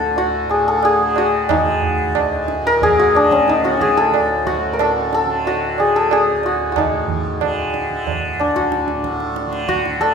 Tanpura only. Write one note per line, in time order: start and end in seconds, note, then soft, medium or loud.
0.00 2.08 D2 medium
0.00 0.45 A2 medium
0.00 1.00 D3 medium
0.46 2.61 A2 medium
1.00 1.54 D3 medium
1.54 3.13 D3 medium
2.08 4.19 D2 medium
2.62 4.70 A2 medium
3.13 3.67 D3 medium
3.67 5.25 D3 medium
4.19 6.32 D2 medium
4.71 6.85 A2 medium
5.25 5.79 D3 medium
5.79 7.38 D3 soft
6.33 8.42 D2 medium
6.85 8.94 A2 medium
7.38 7.89 D3 medium
7.89 9.46 D3 medium
8.43 10.14 D2 medium
8.94 10.14 A2 medium
9.46 9.99 D3 medium
9.99 10.14 D3 medium